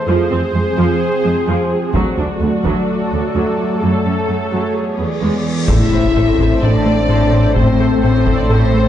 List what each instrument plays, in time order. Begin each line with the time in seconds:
Already playing: analog synth pad C5
0.06 cello section F2, analog synth pad F3 C4 G#4, viola section F3 G#4
0.30 cello section F2, viola section C4
0.53 cello section F2, viola section G#3
0.76 cello section F2, viola section F3
1.24 cello section F2, viola section G#3
1.47 cello section F2, viola section F3
1.94 cello section D2, viola section F#3 F#4, analog synth pad F#3 A3 A4 D5, taiko
2.17 cello section D2, viola section D4
2.41 cello section D2, viola section A3
2.64 cello section D2, viola section F#3, taiko
3.12 cello section D2, viola section A3
3.35 cello section D2, viola section F#3
3.81 cello section F#2, viola section F#3 A4, analog synth pad C#5, cymbal swell
4.05 cello section F#2, viola section C#4
4.29 cello section F#2, viola section A3
4.51 cello section F#2, viola section F#3
4.74 analog synth pad E3 B3 G#4 D5, viola section G#4
4.98 cello section E2, viola section B3
5.22 cello section E2, viola section G#3
5.68 sub bass A1, double bass section A1, cello section A2, analog synth bass A2, analog synth pad A3 C4 A4 C5, french horn section E4, viola section A4 C5, violin section E5, taiko, impact
5.91 analog synth bass A3, viola section A4 C5
6.15 double bass section A1, cello section A2, analog synth bass A2, viola section A4 C5
6.39 analog synth bass A2, viola section A4 C5, taiko
6.61 double bass section A1, cello section A2, analog synth bass A2, french horn section D4, viola section A4 C5, violin section D5
6.85 analog synth bass A3, viola section A4 C5
7.09 double bass section A1, analog synth bass A2, cello section A2, viola section A4 C5
7.33 analog synth bass A2, viola section A4 C5
7.55 double bass section A1, analog synth bass A2, cello section A2, french horn section C4, viola section A4 C5, violin section C5, taiko
7.79 analog synth bass A3, viola section A4 C5
8.03 double bass section A1, cello section A2, analog synth bass A2, french horn section C4, viola section A4 C5, violin section C5
8.27 analog synth bass A2, viola section A4 C5, taiko
8.37 french horn section D4, violin section D5
8.50 double bass section A1, analog synth bass A2, cello section A2, french horn section C4, viola section A4 C5, violin section C5
8.74 analog synth bass A3, viola section A4 C5